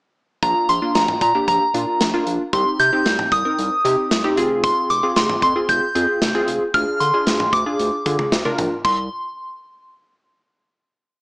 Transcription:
0.43 0.54 A#1 loud
0.43 0.71 A#3 medium
0.43 0.71 D4 medium
0.43 0.71 F4 medium
0.43 0.70 A#5 loud
0.43 kick loud
0.43 closed hi-hat medium
0.69 0.80 A#1 loud
0.69 0.96 C6 loud
0.69 closed hi-hat medium
0.82 1.20 A#3 medium
0.82 1.20 D4 medium
0.82 1.20 F4 medium
0.95 1.07 A#1 loud
0.95 1.20 A#5 medium
0.95 snare loud
0.95 closed hi-hat medium
1.08 mid tom medium
1.21 1.33 A#2 loud
1.21 1.47 A#5 medium
1.21 kick medium
1.21 closed hi-hat medium
1.35 1.63 A#3 medium
1.35 1.63 D4 medium
1.35 1.63 G4 medium
1.48 1.59 A#1 loud
1.48 2.23 A#5 medium
1.48 kick medium
1.48 closed hi-hat medium
1.74 1.86 A#2 loud
1.74 2.03 A#3 medium
1.74 2.03 D4 medium
1.74 2.03 F4 medium
1.74 closed hi-hat medium
2.00 2.12 A#1 loud
2.00 snare loud
2.00 closed hi-hat medium
2.14 2.42 A#3 medium
2.14 2.42 D4 medium
2.14 2.42 F4 loud
2.27 2.38 A#1 medium
2.27 closed hi-hat medium
2.53 2.65 C2 loud
2.53 2.82 C4 medium
2.53 2.82 D#4 medium
2.53 2.82 G4 medium
2.53 2.65 C6 medium
2.53 kick loud
2.53 closed hi-hat medium
2.79 2.91 C3 loud
2.79 3.28 G6 loud
2.79 closed hi-hat medium
2.93 3.31 C4 medium
2.93 3.31 D#4 medium
2.93 3.31 G4 medium
3.06 3.17 C2 loud
3.06 snare loud
3.06 closed hi-hat medium
3.19 mid tom medium
3.32 3.43 C2 loud
3.32 4.07 D#6 medium
3.32 kick medium
3.32 closed hi-hat medium
3.45 3.74 C4 medium
3.45 3.74 D#4 medium
3.45 3.74 A#4 medium
3.58 3.70 C2 loud
3.58 closed hi-hat medium
3.85 3.96 C3 loud
3.85 4.13 C4 medium
3.85 4.13 D#4 medium
3.85 4.13 G4 medium
3.85 closed hi-hat medium
4.11 4.23 C2 loud
4.11 snare loud
4.11 closed hi-hat medium
4.24 4.36 C4 medium
4.24 4.37 D#4 medium
4.24 4.37 G4 loud
4.37 4.72 F1 loud
4.37 4.90 C4 medium
4.37 4.90 F4 medium
4.37 4.90 G#4 loud
4.37 closed hi-hat medium
4.64 4.91 C6 medium
4.64 kick loud
4.64 closed hi-hat medium
4.90 5.01 F1 medium
4.90 5.02 D6 medium
4.90 closed hi-hat medium
5.03 5.41 C4 medium
5.03 5.41 F4 medium
5.03 5.41 G#4 medium
5.16 5.28 F1 loud
5.16 5.42 C6 medium
5.16 snare loud
5.16 closed hi-hat medium
5.29 mid tom medium
5.42 5.54 F2 medium
5.42 5.55 C6 medium
5.42 kick medium
5.42 closed hi-hat medium
5.56 5.84 C4 medium
5.56 5.84 F4 medium
5.56 5.84 G#4 medium
5.69 5.80 F1 loud
5.69 6.44 G6 medium
5.69 kick medium
5.69 closed hi-hat medium
5.95 6.07 F2 medium
5.95 6.24 C4 medium
5.95 6.24 F4 medium
5.95 6.24 G#4 medium
5.95 closed hi-hat medium
6.22 6.33 F1 loud
6.22 snare loud
6.22 closed hi-hat medium
6.35 6.63 C4 medium
6.35 6.63 F4 medium
6.35 6.63 G#4 loud
6.48 6.59 F1 medium
6.48 closed hi-hat medium
6.74 6.86 D2 loud
6.74 7.03 D4 medium
6.74 7.03 F4 medium
6.74 7.03 G#4 medium
6.74 7.01 F6 loud
6.74 kick loud
6.74 closed hi-hat medium
7.00 7.12 D3 loud
7.00 7.55 C6 medium
7.00 closed hi-hat medium
7.14 7.52 D4 medium
7.14 7.52 F4 medium
7.14 7.52 G#4 medium
7.27 7.38 D2 loud
7.27 snare loud
7.27 closed hi-hat medium
7.40 mid tom medium
7.53 7.64 D2 loud
7.53 8.28 D6 medium
7.53 kick medium
7.53 closed hi-hat medium
7.66 7.95 D4 medium
7.66 7.95 F4 medium
7.66 7.95 G#4 medium
7.79 7.91 D2 loud
7.79 closed hi-hat medium
8.06 8.17 D3 medium
8.06 8.35 D4 medium
8.06 8.34 F4 medium
8.06 8.34 G#4 medium
8.06 kick medium
8.06 closed hi-hat medium
8.19 mid tom medium
8.32 8.44 D2 loud
8.32 snare loud
8.32 closed hi-hat medium
8.45 8.74 D4 medium
8.45 8.74 F4 medium
8.45 8.74 A#4 loud
8.45 mid tom medium
8.58 8.70 A#1 medium
8.58 closed hi-hat medium
8.58 mid tom medium
8.85 9.09 C2 loud
8.85 9.09 C6 medium
8.85 kick loud
8.85 crash medium

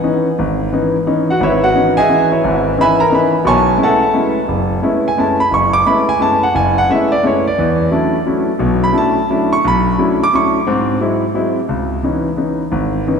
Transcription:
0.04 0.26 E3 medium
0.04 0.26 B3 soft
0.04 0.26 C#4 medium
0.04 0.26 D#4 medium
0.39 0.67 G#1 medium
0.72 0.95 E3 medium
0.72 0.95 B3 soft
0.72 0.95 C#4 soft
0.72 0.95 D#4 medium
1.07 1.29 E3 medium
1.07 1.29 B3 soft
1.07 1.29 C#4 medium
1.07 1.29 D#4 medium
1.30 1.41 F#4 medium
1.30 1.40 F#5 medium
1.40 1.69 G#1 medium
1.40 1.63 E4 medium
1.40 1.63 B4 medium
1.40 1.63 C#5 medium
1.40 1.63 E5 medium
1.64 1.95 F#4 medium
1.64 1.94 F#5 medium
1.74 1.97 E3 medium
1.74 1.98 B3 medium
1.74 1.98 C#4 medium
1.74 1.98 D#4 medium
1.97 2.29 G#4 medium
1.97 2.29 D#5 medium
1.97 2.29 E5 medium
1.97 2.28 G#5 loud
2.09 2.32 E3 medium
2.09 2.32 B3 soft
2.09 2.32 C#4 soft
2.09 2.32 D#4 medium
2.32 2.74 E4 medium
2.32 2.74 B4 medium
2.32 2.74 C#5 medium
2.32 2.74 E5 medium
2.44 2.73 G#1 medium
2.44 2.73 G#2 medium
2.77 3.00 E3 medium
2.77 3.00 B3 medium
2.77 3.01 C#4 medium
2.77 3.01 D#4 medium
2.77 3.00 E5 medium
2.77 3.00 B5 loud
2.81 3.00 B4 medium
2.81 3.01 G#5 medium
3.00 3.11 A#4 medium
3.00 3.11 A#5 medium
3.10 3.34 E3 medium
3.10 3.34 B3 medium
3.10 3.34 C#4 medium
3.10 3.34 D#4 medium
3.15 3.45 B4 medium
3.15 3.45 E5 medium
3.15 3.45 G#5 medium
3.15 3.45 B5 medium
3.45 3.74 B1 medium
3.45 3.74 B2 medium
3.45 3.78 C#5 medium
3.45 3.78 G#5 medium
3.45 3.78 A5 medium
3.45 3.78 C#6 loud
3.78 4.02 G#3 medium
3.78 4.02 A3 soft
3.78 4.02 B3 soft
3.78 4.02 C#4 medium
3.78 4.02 E4 medium
3.83 4.34 A4 medium
3.83 4.34 E5 medium
3.83 4.34 F#5 medium
3.83 4.34 A5 loud
4.14 4.37 G#3 medium
4.14 4.37 A3 soft
4.14 4.37 B3 medium
4.14 4.38 C#4 medium
4.14 4.38 E4 medium
4.48 4.78 F#1 medium
4.82 5.06 G#3 medium
4.82 5.06 A3 medium
4.82 5.06 B3 medium
4.82 5.06 C#4 medium
4.82 5.06 E4 medium
5.08 5.18 G#5 medium
5.17 5.40 G#3 medium
5.17 5.41 A3 medium
5.17 5.40 B3 medium
5.17 5.41 C#4 medium
5.17 5.41 E4 medium
5.17 5.40 A5 medium
5.40 5.51 B5 loud
5.51 5.81 F#1 medium
5.51 5.74 C#6 medium
5.73 5.85 D6 loud
5.86 6.09 G#3 medium
5.86 6.09 A3 medium
5.86 6.10 B3 medium
5.86 6.10 C#4 medium
5.86 6.10 E4 medium
5.86 6.08 B5 medium
6.09 6.20 G#5 loud
6.19 6.43 G#3 medium
6.19 6.43 A3 soft
6.19 6.43 B3 soft
6.19 6.43 C#4 medium
6.19 6.44 E4 medium
6.19 6.42 A5 medium
6.43 6.54 F#5 medium
6.55 6.84 F#1 medium
6.55 6.76 G#5 loud
6.78 6.89 F#5 loud
6.89 7.12 G#3 medium
6.89 7.12 A3 soft
6.89 7.12 B3 medium
6.89 7.13 C#4 medium
6.89 7.13 E4 medium
6.89 7.11 E5 medium
7.12 7.23 D5 medium
7.23 7.47 G#3 medium
7.23 7.47 A3 medium
7.23 7.47 B3 soft
7.23 7.47 C#4 soft
7.23 7.47 E4 medium
7.23 7.46 C#5 medium
7.48 8.23 D5 medium
7.58 7.87 E2 medium
7.58 7.87 E3 medium
7.91 8.15 F#3 medium
7.91 8.15 A3 medium
7.91 8.15 C#4 medium
7.91 8.15 D4 medium
7.91 8.15 E4 medium
8.26 8.49 F#3 medium
8.26 8.49 A3 medium
8.26 8.50 C#4 medium
8.26 8.50 D4 medium
8.26 8.50 E4 medium
8.59 8.89 B1 medium
8.59 8.89 B2 medium
8.84 8.95 B5 loud
8.92 9.17 F#3 medium
8.92 9.17 A3 medium
8.92 9.17 C#4 medium
8.92 9.17 D4 medium
8.92 9.17 E4 medium
8.98 9.28 A5 medium
9.30 9.53 F#3 medium
9.30 9.53 A3 medium
9.30 9.53 C#4 soft
9.30 9.53 D4 medium
9.30 9.53 E4 medium
9.53 9.63 C#6 loud
9.64 9.94 B1 medium
9.64 9.97 B5 loud
9.98 10.21 F#3 medium
9.98 10.22 A3 medium
9.98 10.22 C#4 medium
9.98 10.22 D4 medium
9.98 10.22 E4 medium
10.23 10.33 D6 loud
10.33 10.56 F#3 medium
10.33 10.56 A3 medium
10.33 10.56 C#4 medium
10.33 10.57 D4 soft
10.33 10.56 E4 medium
10.33 10.66 C#6 medium
10.67 10.97 G#2 medium
10.67 10.96 C4 medium
11.00 11.24 F#3 medium
11.00 11.24 G#3 medium
11.00 11.24 C4 medium
11.00 11.25 E4 medium
11.34 11.58 F#3 medium
11.34 11.58 G#3 medium
11.34 11.59 C4 medium
11.34 11.59 E4 medium
11.69 11.99 C#2 medium
12.03 12.27 E3 medium
12.03 12.27 B3 soft
12.03 12.27 C#4 soft
12.03 12.28 D#4 medium
12.36 12.61 E3 soft
12.36 12.61 B3 soft
12.36 12.62 C#4 soft
12.36 12.62 D#4 medium
12.72 13.02 G#1 medium
13.07 13.20 E3 medium
13.07 13.20 B3 soft
13.07 13.20 C#4 medium
13.07 13.20 D#4 medium

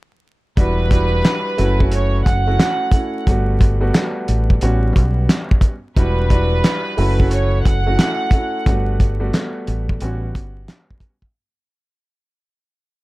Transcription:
0.57 1.21 E1 loud
0.57 0.89 G3 medium
0.57 0.89 D4 medium
0.57 0.89 E4 medium
0.57 0.89 F#4 loud
0.57 1.88 B4 loud
0.57 kick loud
0.57 closed hi-hat medium
0.91 1.54 G3 medium
0.91 1.54 D4 medium
0.91 1.54 E4 medium
0.91 1.54 F#4 medium
0.91 kick loud
0.91 closed hi-hat medium
1.24 snare loud
1.24 clap medium
1.24 closed hi-hat medium
1.57 2.22 F#1 loud
1.57 1.78 A3 medium
1.57 1.78 C#4 medium
1.57 1.78 E4 medium
1.57 1.79 F#4 loud
1.57 closed hi-hat medium
1.79 2.40 A3 medium
1.79 2.40 C#4 medium
1.79 2.40 E4 medium
1.79 2.40 F#4 loud
1.79 kick medium
1.92 2.23 C#5 medium
1.92 closed hi-hat medium
2.25 2.57 F#1 medium
2.25 3.23 F#5 medium
2.25 kick medium
2.25 closed hi-hat medium
2.47 2.57 A3 medium
2.47 2.58 C#4 medium
2.47 2.58 E4 medium
2.47 2.58 F#4 loud
2.59 2.91 A3 medium
2.59 2.91 C#4 medium
2.59 2.91 E4 medium
2.59 2.91 F#4 medium
2.59 snare loud
2.59 clap medium
2.59 closed hi-hat medium
2.92 3.25 A3 medium
2.92 3.25 C#4 medium
2.92 3.25 E4 medium
2.92 3.25 F#4 medium
2.92 kick loud
2.92 closed hi-hat medium
3.27 3.90 G1 loud
3.27 3.77 G3 medium
3.27 3.77 A3 medium
3.27 3.77 B3 medium
3.27 3.77 F#4 loud
3.27 kick loud
3.27 closed hi-hat medium
3.61 kick loud
3.61 closed hi-hat medium
3.80 3.93 G3 medium
3.80 3.93 A3 medium
3.80 3.93 B3 medium
3.80 3.94 F#4 loud
3.94 4.61 G3 medium
3.94 4.62 A3 medium
3.94 4.61 B3 medium
3.94 4.61 F#4 loud
3.94 snare loud
3.94 clap medium
3.94 closed hi-hat medium
4.28 4.59 A1 medium
4.28 closed hi-hat medium
4.50 kick medium
4.61 4.93 A1 loud
4.61 5.72 G3 medium
4.61 5.72 B3 medium
4.61 5.72 C#4 medium
4.61 5.73 F#4 loud
4.61 closed hi-hat medium
4.96 5.27 B1 medium
4.96 kick medium
4.96 closed hi-hat medium
5.29 snare loud
5.29 clap medium
5.29 closed hi-hat medium
5.51 kick medium
5.61 kick loud
5.61 closed hi-hat medium
5.97 6.60 E1 loud
5.97 6.28 G3 medium
5.97 6.28 D4 medium
5.97 6.28 E4 medium
5.97 6.29 F#4 loud
5.97 7.28 B4 loud
5.97 kick loud
5.97 closed hi-hat medium
6.30 6.93 G3 medium
6.30 6.94 D4 medium
6.30 6.94 E4 medium
6.30 6.94 F#4 medium
6.30 kick loud
6.30 closed hi-hat medium
6.64 snare loud
6.64 clap medium
6.64 closed hi-hat medium
6.97 7.61 F#1 loud
6.97 7.17 A3 medium
6.97 7.18 C#4 medium
6.97 7.18 E4 medium
6.97 7.18 F#4 loud
6.97 open hi-hat medium
7.19 7.79 A3 medium
7.19 7.80 C#4 medium
7.19 7.80 E4 medium
7.19 7.80 F#4 loud
7.19 kick medium
7.31 7.62 C#5 medium
7.31 closed hi-hat medium
7.65 7.96 F#1 medium
7.65 8.62 F#5 medium
7.65 kick medium
7.65 closed hi-hat medium
7.86 7.97 A3 medium
7.86 7.97 C#4 medium
7.86 7.97 E4 medium
7.86 7.97 F#4 loud
7.98 8.30 A3 medium
7.98 8.30 C#4 medium
7.98 8.30 E4 medium
7.98 8.30 F#4 medium
7.98 snare loud
7.98 clap medium
7.98 closed hi-hat medium
8.31 8.64 A3 medium
8.31 8.64 C#4 medium
8.31 8.65 E4 medium
8.31 8.65 F#4 medium
8.31 kick loud
8.31 closed hi-hat medium
8.66 9.30 G1 loud
8.66 9.16 G3 medium
8.66 9.17 A3 medium
8.66 9.17 B3 medium
8.66 9.17 F#4 loud
8.66 kick loud
8.66 closed hi-hat medium
9.00 kick loud
9.00 closed hi-hat medium
9.20 9.32 G3 medium
9.20 9.32 A3 medium
9.20 9.33 B3 medium
9.20 9.33 F#4 loud
9.34 10.00 G3 medium
9.34 10.01 A3 medium
9.34 10.00 B3 medium
9.34 10.01 F#4 loud
9.34 snare loud
9.34 clap medium
9.34 closed hi-hat medium
9.67 9.98 A1 medium
9.67 closed hi-hat medium
9.89 kick medium
10.01 10.32 A1 loud
10.01 11.12 G3 medium
10.01 11.12 B3 medium
10.01 11.12 C#4 medium
10.01 11.12 F#4 loud
10.01 closed hi-hat medium
10.35 kick loud
10.35 closed hi-hat medium
10.68 snare loud
10.68 clap medium
10.68 closed hi-hat medium
10.90 kick medium
11.00 kick medium
11.00 closed hi-hat medium
11.22 kick medium

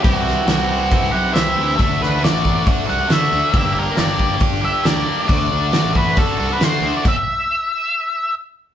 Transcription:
0.03 0.38 C2 loud
0.03 0.46 E3 medium
0.03 0.46 C4 medium
0.03 0.47 E4 loud
0.03 0.14 G4 medium
0.03 0.47 G4 medium
0.03 kick loud
0.03 open hi-hat soft
0.14 1.16 F#4 medium
0.27 snare soft
0.46 0.90 C2 medium
0.46 1.33 E3 medium
0.46 0.70 C4 medium
0.46 0.70 E4 medium
0.46 0.68 G4 medium
0.46 snare loud
0.46 open hi-hat soft
0.69 1.13 C4 medium
0.69 1.12 E4 medium
0.69 1.10 G4 medium
0.91 kick loud
0.91 open hi-hat soft
1.02 1.11 C2 medium
1.11 1.33 B1 medium
1.11 1.33 C4 soft
1.11 1.34 E4 medium
1.11 1.35 G4 medium
1.11 1.33 F#5 medium
1.33 1.55 C2 medium
1.33 1.77 E3 medium
1.33 1.77 C4 medium
1.33 1.77 E4 medium
1.33 1.78 G4 medium
1.33 1.80 E5 loud
1.33 snare loud
1.33 open hi-hat soft
1.58 1.77 D2 medium
1.77 1.96 D2 medium
1.77 2.19 A3 medium
1.77 2.20 D4 medium
1.77 2.20 F#4 medium
1.77 kick loud
1.77 open hi-hat soft
1.81 2.01 E5 loud
2.00 2.26 D2 medium
2.00 2.24 B4 medium
2.00 snare soft
2.20 3.07 A3 medium
2.20 2.44 D4 medium
2.20 2.40 F#4 medium
2.24 2.64 D5 medium
2.24 snare loud
2.24 open hi-hat soft
2.33 2.42 A1 medium
2.42 2.62 A1 medium
2.42 2.87 D4 medium
2.42 2.85 F#4 medium
2.42 kick medium
2.67 kick loud
2.67 open hi-hat soft
2.86 3.06 C2 medium
2.86 3.09 D4 medium
2.86 3.09 F#4 medium
2.86 3.09 F#5 medium
3.08 3.27 D3 medium
3.08 3.52 A3 medium
3.08 3.53 D4 medium
3.08 3.53 F#4 medium
3.08 snare medium
3.08 open hi-hat soft
3.12 3.56 E5 loud
3.32 3.41 D2 medium
3.53 3.88 G1 loud
3.53 3.95 A#3 medium
3.53 3.97 D4 medium
3.53 3.97 G4 loud
3.53 kick loud
3.53 open hi-hat soft
3.57 3.78 E5 loud
3.79 4.00 A#4 medium
3.96 4.40 G1 medium
3.96 4.41 A#3 medium
3.96 4.19 D4 medium
3.96 4.16 G4 medium
3.96 4.39 D5 medium
3.96 snare medium
3.96 open hi-hat soft
4.18 4.63 D4 medium
4.18 4.60 G4 medium
4.18 kick medium
4.40 kick loud
4.40 open hi-hat soft
4.52 4.70 G1 medium
4.62 4.84 D4 medium
4.62 4.85 G4 medium
4.62 4.87 E5 loud
4.83 5.02 D2 medium
4.83 5.25 A#3 medium
4.83 5.26 D4 medium
4.83 5.28 G4 medium
4.83 5.27 D5 loud
4.83 snare loud
4.83 open hi-hat soft
5.26 5.46 D2 medium
5.26 5.71 A3 medium
5.26 5.73 D4 loud
5.26 5.73 F#4 medium
5.26 5.97 D5 loud
5.26 kick loud
5.26 open hi-hat soft
5.51 5.77 D2 medium
5.72 6.17 A3 medium
5.72 5.95 D4 loud
5.72 5.92 F#4 loud
5.72 snare loud
5.72 open hi-hat soft
5.84 5.93 A1 medium
5.93 6.13 A1 medium
5.93 6.38 D4 medium
5.93 6.36 F#4 medium
5.93 6.19 B4 medium
5.93 kick medium
6.16 6.49 A4 medium
6.16 kick loud
6.16 open hi-hat soft
6.37 6.56 C2 medium
6.37 6.61 D4 medium
6.37 6.61 F#4 medium
6.53 6.62 B4 medium
6.59 6.77 D3 medium
6.59 7.03 A3 medium
6.59 7.04 D4 medium
6.59 7.04 F#4 medium
6.59 snare loud
6.59 open hi-hat soft
6.64 6.93 C5 medium
6.81 6.90 D2 medium
6.97 7.01 D5 medium
7.05 8.34 E5 medium
7.05 kick loud
7.05 crash medium

